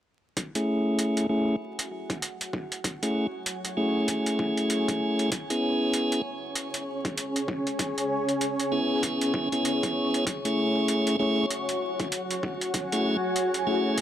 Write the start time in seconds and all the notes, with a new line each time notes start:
0.37 F#4, kick, closed hi-hat
0.55 A3 C#4 E4 G#4, closed hi-hat
0.99 closed hi-hat
1.17 closed hi-hat
1.29 A3 C#4 E4 G#4
1.59 C#5
1.79 closed hi-hat
2.10 kick, closed hi-hat
2.22 closed hi-hat
2.41 G#5, closed hi-hat
2.53 kick
2.72 closed hi-hat
2.84 kick, closed hi-hat
3.03 A3 C#4 E4 G#4, closed hi-hat
3.46 closed hi-hat
3.65 closed hi-hat
3.77 A3 C#4 E4 G#4
4.08 kick, closed hi-hat
4.26 closed hi-hat
4.39 kick
4.57 closed hi-hat
4.70 closed hi-hat
4.88 kick, closed hi-hat
5.19 closed hi-hat
5.32 C#4, kick, closed hi-hat
5.50 B3 C#4 E4 G#4, closed hi-hat
5.82 G#4
5.93 closed hi-hat
6.12 closed hi-hat
6.55 closed hi-hat
6.74 closed hi-hat
7.05 kick, closed hi-hat
7.18 closed hi-hat
7.36 closed hi-hat
7.48 kick
7.67 closed hi-hat
7.79 kick, closed hi-hat
7.98 closed hi-hat
8.29 closed hi-hat
8.41 closed hi-hat
8.60 closed hi-hat
8.72 B3 C#4 E4 G#4
9.03 kick, closed hi-hat
9.21 closed hi-hat
9.34 kick
9.52 B3 C#4 E4 G#4, closed hi-hat
9.65 closed hi-hat
9.83 kick, closed hi-hat
10.14 closed hi-hat
10.27 F#4, kick, closed hi-hat
10.45 A3 C#4 E4 G#4, closed hi-hat
10.88 closed hi-hat
11.07 closed hi-hat
11.19 A3 C#4 E4 G#4
11.50 closed hi-hat
11.69 closed hi-hat
11.91 G#5
12.00 kick, closed hi-hat
12.12 closed hi-hat
12.31 closed hi-hat
12.43 kick
12.61 closed hi-hat
12.74 kick, closed hi-hat
12.92 A3 C#4 E4 G#4, closed hi-hat
13.36 closed hi-hat
13.54 closed hi-hat
13.67 A3 C#4 E4 G#4
13.98 kick, closed hi-hat